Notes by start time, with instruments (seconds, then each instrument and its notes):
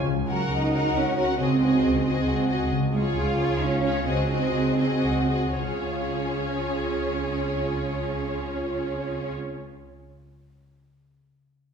Already playing: harp C#4
0.06 double bass section C#2, harp C#3
0.28 cello section F#3, harp C#4, viola section F#4, violin section A#4 F#5
0.51 double bass section C#2, cello section D#4, harp A#4
0.73 viola section F#4, violin section A#4 F#5, harp C#5
0.96 double bass section C#2, cello section C#4, harp F#5
1.18 viola section F#4, violin section A#4 F#5, harp C#5
1.39 double bass section C#2, harp C#3, cello section C4, viola section F#4, violin section G#4 D#5
1.61 harp D#4, viola section F#4, violin section G#4 D#5
1.84 double bass section C#2, harp G#4
2.05 viola section F#4, violin section G#4 D#5, harp D#5
2.28 double bass section C#2, harp F#5
2.49 viola section F#4, violin section G#4 D#5, harp D#5
2.71 double bass section C#2, harp C#3
2.93 cello section G#3, harp C#4, viola section F4, violin section G#4 C#5
3.16 double bass section C#2, cello section F4, harp G#4
3.38 viola section F4, violin section G#4 C#5, harp C#5
3.61 double bass section C#2, cello section C#4, harp F5
3.84 viola section F4, violin section G#4 C#5, harp C#5
4.07 double bass section C#2, harp C#3, cello section C4, viola section F#4, violin section G#4 D#5
4.31 harp D#4, viola section F#4, violin section G#4 D#5
4.55 double bass section C#2, harp G#4
4.79 viola section F#4, violin section G#4 D#5, harp D#5
5.05 double bass section C#2, harp F#5
5.31 viola section F#4, violin section G#4 D#5, harp D#5
5.57 double bass section C#2, harp C#3, cello section C#4, viola section F4, violin section G#4 C#5
5.65 harp C#4
5.72 harp F4
5.79 harp G#4
5.86 harp F5